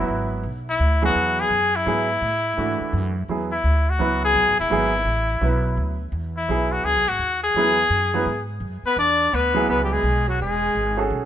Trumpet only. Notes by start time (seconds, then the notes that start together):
Already playing: E4
0.69 E4
1.05 F#4
1.40 G#4
1.76 E4
3.52 E4
3.90 F#4
4.25 G#4
4.60 E4
6.37 E4
6.72 F#4
6.85 G#4
7.09 F#4
7.44 G#4
8.86 B4
8.99 D5
9.35 B4
9.71 B4
9.84 G4
9.93 G#4
10.30 F#4
10.42 G#4